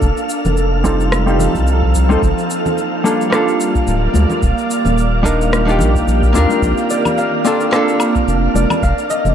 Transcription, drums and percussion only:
0.02 kick, shaker
0.17 shaker
0.29 shaker
0.45 low conga, shaker
0.57 shaker
0.84 kick, shaker
1.00 shaker
1.12 cross-stick, high conga, shaker
1.28 shaker
1.39 low conga, shaker
1.55 kick, shaker
1.67 shaker
1.83 kick
1.95 kick, shaker
2.10 high conga, shaker
2.22 kick, shaker
2.38 shaker
2.50 shaker
2.66 low conga, shaker
2.78 shaker
3.06 shaker
3.21 shaker
3.32 cross-stick, shaker
3.48 shaker
3.60 shaker
3.75 kick, shaker
3.87 shaker
4.14 high conga, shaker
4.30 low conga, shaker
4.42 kick, shaker
4.58 shaker
4.71 shaker
4.85 low conga, shaker
4.98 shaker
5.25 kick, shaker
5.41 shaker
5.52 cross-stick, high conga, shaker
5.68 shaker
5.79 low conga, shaker
5.95 kick, shaker
6.08 shaker
6.23 kick, shaker
6.35 kick, shaker
6.49 high conga, shaker
6.63 kick, shaker
6.78 shaker
6.90 shaker
7.05 low conga, low woodblock, shaker
7.18 shaker
7.45 shaker
7.60 shaker
7.73 cross-stick, shaker
7.88 shaker
8.00 low woodblock, shaker
8.15 kick, shaker
8.28 shaker
8.55 high conga, shaker
8.70 low conga, low woodblock, shaker
8.83 kick, shaker
8.98 shaker
9.10 shaker
9.25 low conga, shaker

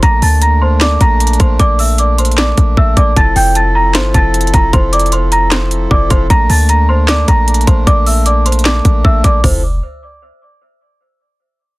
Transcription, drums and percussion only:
0.03 kick, closed hi-hat
0.22 open hi-hat
0.42 closed hi-hat
0.80 snare, clap, closed hi-hat
1.01 kick, closed hi-hat
1.20 closed hi-hat
1.27 closed hi-hat
1.33 closed hi-hat
1.40 kick, closed hi-hat
1.59 kick, closed hi-hat
1.79 open hi-hat
1.98 closed hi-hat
2.18 closed hi-hat
2.25 closed hi-hat
2.32 closed hi-hat
2.37 snare, clap, closed hi-hat
2.57 kick, closed hi-hat
2.77 kick
2.97 kick, closed hi-hat
3.16 kick, closed hi-hat
3.36 open hi-hat
3.55 closed hi-hat
3.94 snare, clap, closed hi-hat
4.14 kick, closed hi-hat
4.34 closed hi-hat
4.41 closed hi-hat
4.47 closed hi-hat
4.54 kick, closed hi-hat
4.73 kick, closed hi-hat
4.93 closed hi-hat, open hi-hat
4.99 closed hi-hat
5.06 closed hi-hat
5.12 closed hi-hat
5.32 closed hi-hat
5.51 snare, clap, closed hi-hat
5.71 closed hi-hat
5.91 kick
6.10 kick, closed hi-hat
6.30 kick, closed hi-hat
6.50 open hi-hat
6.69 closed hi-hat
7.08 snare, clap, closed hi-hat
7.28 kick, closed hi-hat
7.48 closed hi-hat
7.54 closed hi-hat
7.61 closed hi-hat
7.67 kick, closed hi-hat
7.87 kick, closed hi-hat
8.06 open hi-hat
8.26 closed hi-hat
8.46 closed hi-hat
8.52 closed hi-hat
8.59 closed hi-hat
8.65 snare, clap, closed hi-hat
8.85 kick, closed hi-hat
9.05 kick
9.24 kick, closed hi-hat
9.44 kick, floor tom, open hi-hat

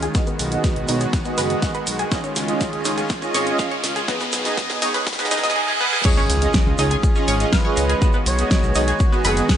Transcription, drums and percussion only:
0.02 closed hi-hat, shaker
0.15 kick, snare, closed hi-hat, shaker
0.27 closed hi-hat, shaker
0.39 open hi-hat, shaker
0.52 closed hi-hat, shaker
0.64 kick, snare, closed hi-hat, shaker
0.76 closed hi-hat
0.88 open hi-hat, shaker
1.00 closed hi-hat, shaker
1.13 kick, snare, closed hi-hat, shaker
1.25 closed hi-hat, shaker
1.38 open hi-hat, shaker
1.50 closed hi-hat, shaker
1.62 kick, snare, closed hi-hat, shaker
1.74 closed hi-hat, shaker
1.87 open hi-hat, shaker
1.99 closed hi-hat, shaker
2.11 kick, snare, closed hi-hat, shaker
2.24 closed hi-hat, shaker
2.36 snare, open hi-hat, shaker
2.48 closed hi-hat, shaker
2.61 kick, snare, closed hi-hat, shaker
2.73 closed hi-hat
2.85 snare, open hi-hat, shaker
2.98 closed hi-hat, shaker
3.10 kick, snare, closed hi-hat, shaker
3.22 closed hi-hat, shaker
3.34 snare, open hi-hat, shaker
3.46 closed hi-hat, shaker
3.59 kick, snare, closed hi-hat, shaker
3.71 closed hi-hat
3.84 snare, open hi-hat, shaker
3.96 closed hi-hat, shaker
4.08 kick, snare, closed hi-hat, shaker
4.20 snare, closed hi-hat, shaker
4.32 snare, open hi-hat, shaker
4.45 snare, closed hi-hat, shaker
4.57 kick, snare, closed hi-hat, shaker
4.70 snare, closed hi-hat
4.82 snare, open hi-hat, shaker
4.94 snare, closed hi-hat, shaker
5.07 kick, snare, closed hi-hat, shaker
5.13 snare
5.19 snare, closed hi-hat, shaker
5.25 snare
5.31 snare, open hi-hat, shaker
5.37 snare
5.43 snare, closed hi-hat, shaker
5.50 snare
6.04 kick, closed hi-hat, crash, shaker
6.18 shaker
6.30 open hi-hat, shaker
6.42 closed hi-hat, shaker
6.53 kick, snare, closed hi-hat, shaker
6.78 open hi-hat, shaker
6.91 closed hi-hat, shaker
7.03 kick, closed hi-hat, shaker
7.15 shaker
7.28 open hi-hat, shaker
7.40 closed hi-hat, shaker
7.53 kick, snare, closed hi-hat, shaker
7.77 open hi-hat, shaker
7.89 closed hi-hat, shaker
8.02 kick, closed hi-hat, shaker
8.13 shaker
8.26 open hi-hat, shaker
8.38 closed hi-hat, shaker
8.51 kick, snare, closed hi-hat, shaker
8.63 shaker
8.75 open hi-hat, shaker
8.88 closed hi-hat, shaker
9.00 kick, closed hi-hat, shaker
9.13 shaker
9.25 open hi-hat, shaker
9.37 closed hi-hat, shaker
9.49 kick, snare, closed hi-hat, shaker

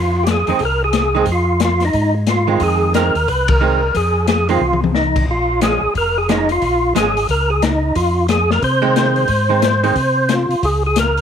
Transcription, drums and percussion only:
0.27 snare, closed hi-hat
0.47 open hi-hat
0.59 kick, open hi-hat
0.93 snare, closed hi-hat
1.26 kick, open hi-hat
1.60 snare, closed hi-hat
1.80 snare, open hi-hat
1.93 kick, open hi-hat
2.27 snare, closed hi-hat
2.60 kick, open hi-hat
2.94 snare, closed hi-hat
3.15 open hi-hat
3.28 kick, open hi-hat
3.48 kick, ride
3.95 kick, open hi-hat
4.28 snare, closed hi-hat
4.49 open hi-hat
4.61 high tom
4.73 high tom
4.84 high tom
4.94 snare
5.16 kick, crash
5.28 kick
5.61 snare, closed hi-hat
5.95 kick, open hi-hat
6.29 snare, closed hi-hat
6.49 open hi-hat
6.62 kick, open hi-hat
6.96 snare, closed hi-hat
7.17 open hi-hat
7.29 kick, open hi-hat
7.62 snare, closed hi-hat
7.95 kick, open hi-hat
8.28 snare, closed hi-hat
8.50 snare
8.62 kick, open hi-hat
8.96 snare, closed hi-hat
9.16 open hi-hat
9.28 kick, open hi-hat
9.62 snare, closed hi-hat
9.84 open hi-hat
9.96 kick, open hi-hat
10.29 snare, closed hi-hat
10.51 open hi-hat
10.63 kick, open hi-hat
10.96 snare, closed hi-hat
11.17 open hi-hat

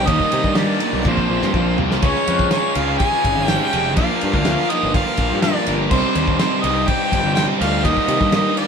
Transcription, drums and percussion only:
0.08 kick, ride
0.20 kick, snare
0.32 ride
0.44 kick
0.55 snare, ride
0.80 ride
1.05 kick, high tom
1.17 kick
1.42 snare
1.54 kick
1.78 floor tom
1.91 snare
2.02 kick, ride
2.15 snare
2.27 ride
2.39 kick
2.51 snare, ride
2.75 ride
3.00 kick, ride
3.12 snare
3.25 kick, ride
3.48 snare, ride
3.73 ride
3.97 kick, ride
4.21 ride
4.33 kick, snare
4.45 snare, ride
4.70 ride
4.94 kick, ride
5.06 snare
5.17 kick, ride
5.42 snare, ride
5.67 ride
5.91 kick, crash
6.15 ride
6.28 kick
6.39 snare, ride
6.64 ride
6.88 kick, ride
7.12 kick, ride
7.37 snare, ride
7.61 ride
7.85 kick, ride
7.97 kick, snare
8.08 ride
8.21 kick, snare
8.32 snare, ride
8.57 ride

